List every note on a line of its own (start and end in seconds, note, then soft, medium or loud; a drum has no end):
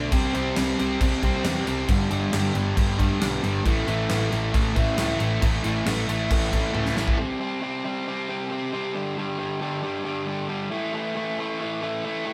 0.00 0.12 B1 medium
0.00 0.11 D3 medium
0.00 0.11 A3 medium
0.00 0.11 D4 loud
0.12 0.28 C2 loud
0.12 0.33 C3 loud
0.12 0.34 G3 loud
0.12 0.34 C4 loud
0.12 kick loud
0.12 crash medium
0.34 0.50 C2 medium
0.34 0.55 C3 medium
0.34 0.57 G3 medium
0.34 0.56 C4 medium
0.34 crash medium
0.56 0.73 C2 medium
0.56 0.78 C3 medium
0.56 0.80 G3 medium
0.56 0.80 C4 loud
0.56 snare loud
0.56 crash medium
0.79 0.95 C2 medium
0.79 1.00 C3 medium
0.79 1.01 G3 medium
0.79 1.01 C4 medium
0.79 crash medium
1.01 1.32 C2 medium
1.01 1.21 C3 medium
1.01 1.22 G3 loud
1.01 1.23 C4 loud
1.01 kick loud
1.01 crash medium
1.22 1.43 C3 loud
1.22 1.43 G3 medium
1.22 1.44 C4 loud
1.22 kick medium
1.22 crash medium
1.44 1.60 E2 loud
1.44 1.65 C3 medium
1.44 1.66 G3 medium
1.44 1.67 C4 loud
1.44 snare loud
1.44 crash medium
1.66 1.83 C2 medium
1.66 1.87 C3 medium
1.66 1.88 G3 medium
1.66 1.88 C4 loud
1.66 crash medium
1.88 2.05 G1 medium
1.88 2.09 G2 loud
1.88 2.09 D3 loud
1.88 2.10 G3 loud
1.88 kick loud
1.88 crash medium
2.10 2.26 G1 medium
2.10 2.31 G2 medium
2.10 2.32 D3 medium
2.10 2.32 G3 medium
2.10 crash medium
2.32 2.49 G1 medium
2.32 2.53 G2 loud
2.32 2.53 D3 loud
2.32 2.54 G3 loud
2.32 snare loud
2.32 crash loud
2.54 2.71 G1 medium
2.54 2.75 G2 medium
2.54 2.76 D3 medium
2.54 2.76 G3 medium
2.54 crash medium
2.76 3.09 G1 loud
2.76 2.97 G2 loud
2.76 2.98 D3 medium
2.76 2.98 G3 loud
2.76 kick loud
2.76 crash medium
2.98 3.18 G2 loud
2.98 3.20 D3 loud
2.98 3.20 G3 loud
2.98 kick medium
2.98 crash medium
3.20 3.37 B1 loud
3.20 3.41 G2 loud
3.20 3.42 D3 loud
3.20 3.42 G3 loud
3.20 snare loud
3.20 crash medium
3.42 3.59 G1 medium
3.42 3.64 G2 medium
3.42 3.64 D3 medium
3.42 3.64 G3 medium
3.42 crash medium
3.65 3.81 A1 loud
3.65 3.87 A2 loud
3.65 3.88 E3 loud
3.65 3.88 A3 loud
3.65 kick loud
3.65 crash medium
3.87 4.03 A1 loud
3.87 4.09 A2 loud
3.87 4.10 E3 medium
3.87 4.10 A3 loud
3.87 crash medium
4.09 4.26 A1 loud
4.09 4.31 A2 loud
4.09 4.31 E3 loud
4.09 4.32 A3 loud
4.09 snare loud
4.09 crash medium
4.31 4.48 A1 medium
4.31 4.52 A2 medium
4.31 4.53 E3 loud
4.31 4.53 A3 medium
4.31 crash medium
4.53 4.86 A1 medium
4.53 4.74 A2 loud
4.53 4.76 E3 loud
4.53 4.75 A3 loud
4.53 kick loud
4.53 crash medium
4.76 4.97 A2 loud
4.76 4.99 E3 loud
4.76 4.98 A3 loud
4.76 kick loud
4.76 crash medium
4.98 5.14 C#2 medium
4.98 5.18 A2 loud
4.98 5.20 E3 loud
4.98 5.19 A3 loud
4.98 snare loud
4.98 crash medium
5.19 5.36 A1 loud
5.19 5.40 A2 medium
5.19 5.41 E3 medium
5.19 5.41 A3 loud
5.19 crash medium
5.41 5.58 A1 loud
5.41 5.62 A2 loud
5.41 5.63 E3 loud
5.41 5.64 A3 loud
5.41 kick loud
5.41 crash medium
5.63 5.80 A1 medium
5.63 5.85 A2 medium
5.63 5.85 E3 medium
5.63 5.86 A3 loud
5.63 crash medium
5.86 6.02 A1 medium
5.86 6.07 A2 medium
5.86 6.08 E3 loud
5.86 6.08 A3 loud
5.86 snare loud
5.86 crash medium
6.07 6.23 A1 medium
6.07 6.29 A2 medium
6.07 6.30 E3 medium
6.07 6.31 A3 loud
6.07 crash medium
6.30 6.62 A1 medium
6.30 6.51 A2 medium
6.30 6.52 E3 loud
6.30 6.52 A3 loud
6.30 kick loud
6.30 crash medium
6.52 6.73 A2 medium
6.52 6.73 E3 loud
6.52 6.74 A3 loud
6.52 kick medium
6.52 crash medium
6.74 6.90 C#2 medium
6.74 6.95 A2 medium
6.74 6.96 E3 loud
6.74 6.96 A3 loud
6.74 high tom medium
6.86 snare medium
6.96 7.12 A1 medium
6.96 7.17 A2 medium
6.96 7.18 E3 medium
6.96 7.18 A3 medium
6.96 snare medium
7.08 kick loud
7.18 7.38 C3 loud
7.18 7.40 G3 loud
7.18 7.39 C4 loud
7.39 7.61 C3 medium
7.39 7.62 G3 medium
7.39 7.62 C4 loud
7.62 7.83 C3 loud
7.62 7.85 G3 loud
7.62 7.84 C4 loud
7.84 8.06 C3 medium
7.84 8.07 G3 medium
7.84 8.07 C4 medium
8.07 8.27 C3 medium
8.07 8.28 G3 loud
8.07 8.29 C4 loud
8.29 8.49 C3 loud
8.29 8.50 G3 loud
8.29 8.50 C4 loud
8.50 8.71 C3 medium
8.50 8.72 G3 loud
8.50 8.72 C4 medium
8.73 8.94 C3 loud
8.73 8.94 G3 medium
8.73 8.94 C4 medium
8.94 9.16 G2 medium
8.94 9.16 D3 loud
8.94 9.17 G3 loud
9.17 9.37 G2 medium
9.17 9.37 D3 medium
9.17 9.38 G3 loud
9.38 9.59 G2 loud
9.38 9.60 D3 loud
9.38 9.61 G3 loud
9.60 9.81 G2 loud
9.60 9.82 D3 loud
9.60 9.83 G3 loud
9.82 10.03 G2 medium
9.82 10.04 D3 loud
9.82 10.04 G3 loud
10.04 10.25 G2 loud
10.04 10.26 D3 loud
10.04 10.26 G3 loud
10.26 10.47 G2 medium
10.26 10.47 D3 medium
10.26 10.48 G3 loud
10.48 10.70 G2 medium
10.48 10.70 D3 medium
10.48 10.70 G3 loud
10.71 10.92 A2 loud
10.71 10.93 E3 loud
10.71 10.94 A3 loud
10.93 11.14 A2 medium
10.93 11.15 E3 loud
10.93 11.16 A3 medium
11.15 11.37 A2 medium
11.15 11.37 E3 loud
11.15 11.39 A3 loud
11.38 11.59 A2 medium
11.38 11.60 E3 medium
11.38 11.60 A3 loud
11.60 11.80 A2 medium
11.60 11.81 E3 loud
11.60 11.82 A3 loud
11.82 12.02 A2 loud
11.82 12.03 E3 loud
11.82 12.04 A3 loud
12.03 12.24 A2 medium
12.03 12.25 E3 loud
12.03 12.25 A3 loud
12.25 12.33 A2 medium
12.25 12.33 E3 loud
12.25 12.33 A3 loud